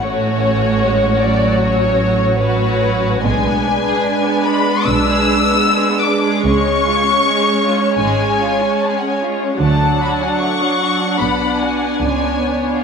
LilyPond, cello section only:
\new Staff \with { instrumentName = "Cello section" } { \clef bass \time 4/4 \key fis \minor \tempo 4 = 75 a,1 | b,4 r4 b,4 r4 | cis4 r4 gis,4 r4 | d4 r4 b,4 cis4 | }